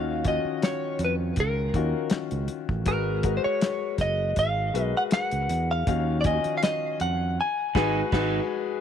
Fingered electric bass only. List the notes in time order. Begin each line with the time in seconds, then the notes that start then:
Already playing: D#2
0.45 muted fingered electric bass stroke
0.99 F2
1.37 C#2
1.74 D#2
2.12 muted fingered electric bass stroke
2.32 C#2
2.69 A1
2.87 G#1
3.45 muted fingered electric bass stroke
3.99 F#1
4.37 G#1
4.74 B1
5.32 C#2
5.49 E2
5.87 D#2
6.45 muted fingered electric bass stroke
7.01 F2
7.75 G#1
8.13 G#1